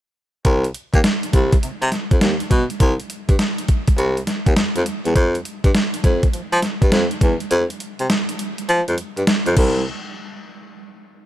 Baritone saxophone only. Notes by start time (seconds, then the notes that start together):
0.45 C2
0.94 D#2
1.34 C2
1.63 C3
1.82 C3
2.11 F2
2.22 D#2
2.51 B2
2.80 C2
3.29 G2
3.98 C2
4.47 D#2
4.57 F2
4.76 F2
5.05 E2
5.16 F2
5.64 G2
6.04 F2
6.33 F3
6.52 F3
6.82 G2
6.92 F2
7.21 E2
7.51 F2
8.00 C3
8.69 F3
8.88 F2
9.17 G2
9.47 F2
9.57 C2